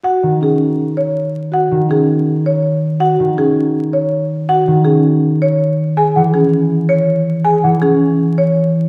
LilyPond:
<<
  \new Staff \with { instrumentName = "Flute" } { \time 4/4 \key cis \minor \tempo 4 = 162 r1 | r1 | r1 | r1 |
r8 fis''8 r2. | r8 fis''8 r2. | }
  \new Staff \with { instrumentName = "Marimba" } { \time 4/4 \key cis \minor fis''8 r8 gis'8 r4 cis''8 r4 | fis''8 r8 gis'8 r4 cis''8 r4 | fis''8 r8 gis'8 r4 cis''8 r4 | fis''8 r8 gis'8 r4 cis''8 r4 |
gis''8 r8 gis'8 r4 cis''8 r4 | gis''8 r8 gis'8 r4 cis''8 r4 | }
  \new Staff \with { instrumentName = "Vibraphone" } { \time 4/4 \key cis \minor fis'8 r8 cis'8 r2 r8 | fis'8 r8 cis'8 r2 r8 | fis'8 r8 cis'8 r2 r8 | fis'8 r8 cis'8 r2 r8 |
gis'8 r8 cis'8 r2 r8 | gis'8 r8 cis'8 r2 r8 | }
  \new Staff \with { instrumentName = "Harp" } { \clef bass \time 4/4 \key cis \minor r8 dis2.~ dis8~ | dis8 dis2.~ dis8~ | dis8 dis2.~ dis8~ | dis8 dis2.~ dis8 |
r8 e2.~ e8~ | e8 e2.~ e8 | }
>>